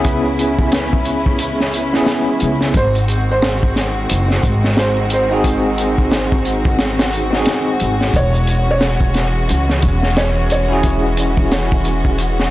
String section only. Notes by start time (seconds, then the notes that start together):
Already playing: C#3 G#3 E4
0.05 C#4
2.74 D#3 C4 F#4
8.14 E3 G#3 C#4